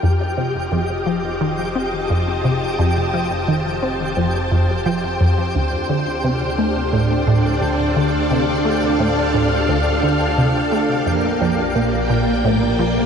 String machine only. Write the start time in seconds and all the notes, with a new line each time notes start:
Already playing: F4 G5
0.12 D#5
0.19 C5
0.88 A5
5.55 D4
5.72 A4
6.23 F5
11.07 A#3
11.23 A#4 D5
11.98 G5